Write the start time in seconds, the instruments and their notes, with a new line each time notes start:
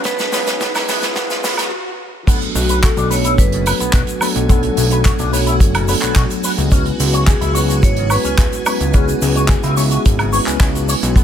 Already playing: analog synth bass C#2, string machine F#4 G#5, riser
0.04 tine electric piano F#3 G#3 B3 C#4 G#4, clean electric guitar B3, vibraphone B4, kick, snare, closed hi-hat, shaker
0.19 snare, closed hi-hat, shaker
0.32 analog synth bass C#2, tine electric piano F#3 G#3 B3 C#4 G#4, clean electric guitar B3, snare, open hi-hat, shaker
0.47 snare, closed hi-hat, shaker
0.60 tine electric piano F#3 G#3 B3 C#4 G#4, clean electric guitar B3, kick, snare, closed hi-hat, shaker
0.75 analog synth bass C#2, snare, open hi-hat, high woodblock, shaker
0.88 tine electric piano F#3 G#3 B3 C#4 G#4, clean electric guitar B3, snare, open hi-hat, shaker
1.02 snare, closed hi-hat, shaker
1.16 analog synth bass G#1, tine electric piano F#3 G#3 C#4 G#4, clean electric guitar B3, kick, snare, closed hi-hat, shaker
1.30 snare, closed hi-hat, shaker
1.43 tine electric piano F#3 G#3 B3 C#4 G#4, clean electric guitar B3, snare, open hi-hat, shaker
1.57 snare, closed hi-hat, high woodblock, shaker
2.27 tine electric piano F#3 A3 B3 D4 A4, clean electric guitar B3, string machine F#4 G#5, kick, closed hi-hat, crash, shaker
2.42 closed hi-hat
2.55 analog synth bass B1, vibraphone F#4, open hi-hat, shaker
2.69 clean electric guitar B4, closed hi-hat, shaker
2.83 clean electric guitar F#4, vibraphone A4, kick, clap, closed hi-hat, shaker
2.97 analog synth bass B1, clean electric guitar D4, closed hi-hat, shaker
3.10 tine electric piano F#3 A3 B3 D4 A4, clean electric guitar B4, vibraphone C#5, open hi-hat, shaker
3.24 clean electric guitar E4, closed hi-hat, shaker
3.38 analog synth bass F#1, vibraphone B4, kick, closed hi-hat, shaker
3.52 clean electric guitar B2, closed hi-hat
3.66 clean electric guitar B4, open hi-hat, high woodblock, shaker
3.80 analog synth bass B1, clean electric guitar B3, closed hi-hat, shaker
3.93 analog synth bass B1, clean electric guitar F#4, kick, clap, closed hi-hat, shaker
4.07 closed hi-hat, shaker
4.21 tine electric piano F#3 A3 B3 D4 A4, vibraphone A4, clean electric guitar B4, open hi-hat, high woodblock, shaker
4.36 analog synth bass B1, closed hi-hat, shaker
4.48 tine electric piano F#3 A3 B3 D4 A4, clean electric guitar B3, kick, closed hi-hat, shaker
4.63 closed hi-hat
4.77 analog synth bass B1, open hi-hat, shaker
4.90 clean electric guitar B4, closed hi-hat, shaker
5.05 clean electric guitar F#4, kick, clap, closed hi-hat, shaker
5.19 analog synth bass B1, clean electric guitar D4, closed hi-hat, shaker
5.32 tine electric piano F#3 A3 B3 D4 C#5, clean electric guitar B4, open hi-hat, shaker
5.47 clean electric guitar E4, closed hi-hat, shaker
5.60 analog synth bass F#1, kick, closed hi-hat, shaker
5.74 clean electric guitar B2, closed hi-hat, high woodblock
5.88 tine electric piano F#3 A3 B3 D4 A4, clean electric guitar B4, open hi-hat, shaker
6.01 analog synth bass B1, clean electric guitar B3, clap, closed hi-hat, shaker
6.16 analog synth bass B1, clean electric guitar F#4, kick, clap, closed hi-hat, shaker
6.30 closed hi-hat, shaker
6.44 clean electric guitar B4, open hi-hat, shaker
6.58 analog synth bass C#2, closed hi-hat, shaker
6.71 tine electric piano G#3 B3 C#4 E4 B4, clean electric guitar C#4, kick, closed hi-hat, shaker
6.86 closed hi-hat
7.00 analog synth bass C#2, open hi-hat, shaker
7.13 clean electric guitar C#5, closed hi-hat, shaker
7.27 vibraphone G#4, clean electric guitar G#4, kick, clap, closed hi-hat, shaker
7.41 analog synth bass C#2, clean electric guitar E4, closed hi-hat, shaker
7.54 tine electric piano G#3 B3 C#4 E4 B4, clean electric guitar C#5, open hi-hat, shaker
7.69 clean electric guitar F#4, closed hi-hat, shaker
7.83 analog synth bass G#1, vibraphone C#5, kick, closed hi-hat, shaker
7.96 clean electric guitar C#3, closed hi-hat
8.10 vibraphone B4, clean electric guitar C#5, open hi-hat, high woodblock, shaker
8.24 analog synth bass C#2, clean electric guitar C#4, closed hi-hat, shaker
8.38 analog synth bass C#2, clean electric guitar G#4, kick, clap, closed hi-hat, shaker
8.52 closed hi-hat, shaker
8.66 tine electric piano G#3 B3 C#4 E4 B4, vibraphone B4, clean electric guitar C#5, open hi-hat, high woodblock, shaker
8.80 analog synth bass C#2, closed hi-hat, shaker
8.93 tine electric piano G#3 B3 C#4 E4 B4, clean electric guitar C#4, vibraphone G#4, kick, closed hi-hat, shaker
9.09 closed hi-hat, shaker
9.22 analog synth bass C#2, vibraphone G#4, open hi-hat, shaker
9.35 clean electric guitar C#5, closed hi-hat, shaker
9.48 clean electric guitar G#4, kick, clap, closed hi-hat, shaker
9.63 analog synth bass C#2, clean electric guitar E4, closed hi-hat, shaker
9.77 tine electric piano G#3 B3 C#4 E4 E5, clean electric guitar C#5, open hi-hat, shaker
9.91 clean electric guitar F#4, closed hi-hat, shaker
10.06 analog synth bass G#1, kick, closed hi-hat, shaker
10.19 clean electric guitar C#3, closed hi-hat, high woodblock
10.33 tine electric piano G#3 B3 C#4 E4 B4, clean electric guitar C#5, open hi-hat, shaker
10.46 analog synth bass C#2, tine electric piano G#3 B3 C#4 E4 B4, clean electric guitar C#4, clap, closed hi-hat, shaker
10.60 analog synth bass C#2, clean electric guitar G#4, kick, clap, closed hi-hat, shaker
10.75 closed hi-hat, shaker
10.89 clean electric guitar C#5, open hi-hat, shaker
11.03 analog synth bass B1, closed hi-hat, shaker
11.16 tine electric piano F#3 A3 B3 D4 A4, clean electric guitar B3, string machine E4 E5, kick, closed hi-hat, shaker